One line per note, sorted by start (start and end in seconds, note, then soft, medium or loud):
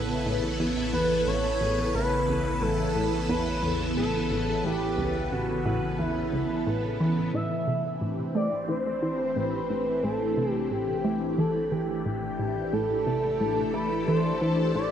0.00 0.17 A1 medium
0.00 7.30 A1 medium
0.00 7.33 C#3 medium
0.00 7.32 E3 medium
0.00 7.34 B3 medium
0.00 9.31 E4 medium
0.00 9.50 A4 medium
0.00 7.35 B4 medium
0.26 0.41 A2 medium
0.59 0.84 E2 medium
0.93 1.25 E2 medium
0.93 1.29 B4 loud
1.27 1.51 A1 medium
1.27 1.94 C#5 loud
1.61 1.85 A1 medium
1.95 2.26 A1 medium
1.95 2.64 B4 loud
2.28 2.60 C#2 medium
2.62 2.86 A1 medium
2.62 3.29 A4 loud
2.95 3.10 A2 medium
3.29 3.54 E2 medium
3.29 3.93 B4 loud
3.63 3.95 E2 medium
3.96 4.21 A1 medium
3.96 4.66 A4 loud
4.30 4.55 A1 medium
4.64 4.96 A1 medium
4.64 5.33 G4 loud
4.98 5.30 C#2 medium
5.31 5.56 A1 medium
5.31 5.98 F#4 loud
5.65 5.80 A2 medium
5.99 6.23 E2 medium
5.99 6.96 E4 medium
6.33 6.47 C#2 medium
6.66 6.98 A2 medium
7.00 7.32 E3 medium
7.33 14.91 A1 medium
7.33 7.66 A2 medium
7.33 14.91 E3 medium
7.33 7.97 E5 loud
7.33 14.91 B5 medium
7.55 14.91 A3 medium
7.67 7.99 C3 medium
7.81 14.91 D4 medium
7.81 14.91 G4 medium
7.85 12.65 C4 medium
8.01 8.26 A2 medium
8.35 8.50 A3 medium
8.35 8.66 D5 medium
8.69 8.93 E3 medium
8.69 9.38 C5 medium
9.02 9.34 E3 medium
9.36 9.61 A2 medium
9.36 10.03 B4 medium
9.70 9.94 A2 medium
10.03 10.35 A2 medium
10.03 10.51 A4 loud
10.37 10.69 C3 medium
10.51 10.67 G4 loud
10.71 10.95 A2 medium
10.71 11.40 G4 medium
11.04 11.19 A3 medium
11.38 11.63 E3 medium
11.38 11.65 A4 medium
11.65 11.74 A4 medium
11.72 12.04 E3 medium
11.72 12.05 G4 medium
12.05 12.30 A2 medium
12.05 12.74 G4 loud
12.39 12.64 A2 medium
12.45 14.91 A4 medium
12.73 13.05 A2 medium
12.73 13.76 A4 loud
13.06 13.39 C3 medium
13.40 13.65 A2 medium
13.74 13.89 A3 medium
13.74 14.07 B4 loud
14.07 14.32 E3 medium
14.07 14.71 C5 loud
14.41 14.73 E3 medium
14.75 14.91 A2 medium
14.75 14.91 D5 loud